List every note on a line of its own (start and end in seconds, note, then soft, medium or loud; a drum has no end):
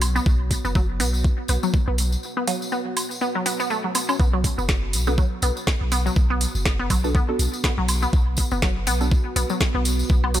0.00 0.19 B1 loud
0.00 10.40 B3 medium
0.00 10.40 F#4 medium
0.00 0.91 C#5 medium
0.00 open hi-hat medium
0.00 tambourine medium
0.00 low woodblock soft
0.15 0.19 B3 loud
0.15 tambourine medium
0.26 0.56 B1 loud
0.26 kick loud
0.26 tambourine soft
0.51 kick medium
0.51 open hi-hat medium
0.51 tambourine medium
0.65 1.01 F#1 medium
0.65 0.68 B3 loud
0.65 tambourine soft
0.75 0.80 F#3 loud
0.75 kick loud
0.75 tambourine soft
0.89 4.84 F#5 medium
1.00 1.30 B1 medium
1.00 1.04 B3 loud
1.00 open hi-hat medium
1.00 tambourine medium
1.14 tambourine soft
1.24 kick loud
1.48 1.58 B1 medium
1.48 1.53 B3 loud
1.48 open hi-hat medium
1.48 tambourine medium
1.63 1.66 F#3 loud
1.63 tambourine soft
1.74 kick loud
1.74 tambourine soft
1.88 2.16 B1 loud
1.88 1.91 B3 loud
1.98 open hi-hat medium
1.98 tambourine medium
2.12 tambourine medium
2.23 tambourine soft
2.37 2.40 B3 loud
2.47 2.52 F#3 loud
2.47 open hi-hat medium
2.47 tambourine medium
2.47 cowbell medium
2.62 tambourine medium
2.72 2.76 B3 loud
2.72 tambourine soft
2.97 open hi-hat medium
2.97 tambourine medium
2.97 low woodblock soft
3.11 tambourine soft
3.21 3.26 B3 loud
3.21 tambourine soft
3.35 3.38 F#3 loud
3.46 3.48 B3 loud
3.46 open hi-hat medium
3.46 tambourine medium
3.60 3.62 B3 loud
3.60 tambourine medium
3.70 3.77 A3 loud
3.70 tambourine soft
3.84 3.86 F#3 medium
3.95 4.01 B3 medium
3.95 open hi-hat medium
3.95 tambourine medium
3.95 low woodblock medium
4.09 4.14 C#4 medium
4.09 tambourine soft
4.09 low woodblock medium
4.20 4.49 B1 loud
4.20 4.24 B3 loud
4.20 kick loud
4.20 tambourine soft
4.33 4.37 F#3 loud
4.44 kick medium
4.44 open hi-hat medium
4.44 tambourine medium
4.58 4.95 F#1 medium
4.58 4.61 B3 loud
4.58 tambourine soft
4.68 kick loud
4.68 snare medium
4.68 tambourine soft
4.93 5.23 B1 medium
4.93 open hi-hat medium
4.93 tambourine medium
5.03 10.40 B4 medium
5.07 5.11 B3 loud
5.07 5.13 B3 medium
5.07 5.13 D4 medium
5.07 5.13 F#4 medium
5.07 5.13 A4 medium
5.07 tambourine medium
5.18 5.22 F#3 loud
5.18 kick loud
5.18 tambourine soft
5.42 5.51 B1 medium
5.42 5.47 B3 loud
5.42 open hi-hat medium
5.42 tambourine medium
5.57 tambourine medium
5.67 kick loud
5.67 snare medium
5.67 tambourine soft
5.81 6.10 B1 loud
5.92 5.96 B3 loud
5.92 open hi-hat medium
5.92 tambourine medium
6.06 6.09 F#3 loud
6.06 tambourine medium
6.16 6.46 B1 loud
6.16 kick loud
6.16 tambourine soft
6.30 6.34 B3 loud
6.41 open hi-hat medium
6.41 tambourine medium
6.55 6.92 F#1 medium
6.55 tambourine soft
6.66 kick loud
6.66 snare medium
6.79 6.83 B3 loud
6.90 7.20 B1 medium
6.90 6.94 F#3 loud
6.90 kick medium
6.90 open hi-hat medium
6.90 tambourine loud
6.90 low woodblock medium
7.04 7.10 B3 medium
7.04 7.10 D4 medium
7.04 7.10 F#4 medium
7.04 7.10 A4 loud
7.04 tambourine medium
7.15 7.19 B3 loud
7.15 kick loud
7.15 tambourine soft
7.29 7.38 B3 medium
7.29 7.38 D4 medium
7.29 7.38 F#4 medium
7.29 7.38 A4 medium
7.39 7.48 B1 medium
7.39 open hi-hat medium
7.39 tambourine medium
7.53 tambourine medium
7.64 7.68 B3 loud
7.64 kick loud
7.64 snare loud
7.78 8.06 B1 loud
7.78 7.81 F#3 loud
7.88 open hi-hat loud
7.88 tambourine medium
7.88 low woodblock medium
8.02 8.06 B3 loud
8.02 tambourine medium
8.13 8.43 B1 loud
8.13 kick loud
8.13 tambourine soft
8.37 kick medium
8.37 open hi-hat medium
8.37 tambourine loud
8.51 8.88 F#1 medium
8.51 8.55 B3 loud
8.51 tambourine medium
8.62 8.67 F#3 loud
8.62 kick loud
8.62 snare medium
8.62 tambourine soft
8.87 9.17 B1 medium
8.87 8.91 B3 loud
8.87 open hi-hat loud
8.87 tambourine loud
9.01 9.07 B3 medium
9.01 9.07 D4 medium
9.01 9.07 F#4 medium
9.01 9.07 A4 medium
9.01 tambourine medium
9.11 kick loud
9.11 tambourine soft
9.36 9.44 B1 medium
9.36 9.40 B3 loud
9.36 open hi-hat medium
9.36 tambourine loud
9.50 9.53 F#3 loud
9.50 tambourine medium
9.60 kick loud
9.60 snare medium
9.60 tambourine soft
9.74 10.03 B1 loud
9.74 9.78 B3 loud
9.85 open hi-hat loud
9.85 tambourine loud
9.99 tambourine medium
10.09 10.40 B1 loud
10.09 kick loud
10.09 tambourine soft
10.24 10.27 B3 loud
10.24 low woodblock medium
10.34 10.39 F#3 loud
10.34 open hi-hat medium
10.34 tambourine loud